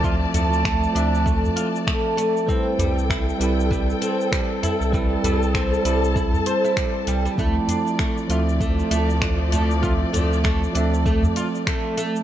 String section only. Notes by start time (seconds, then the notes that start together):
Already playing: F3 D5 A5
2.48 A4 G5
4.94 A5
7.38 F3 D5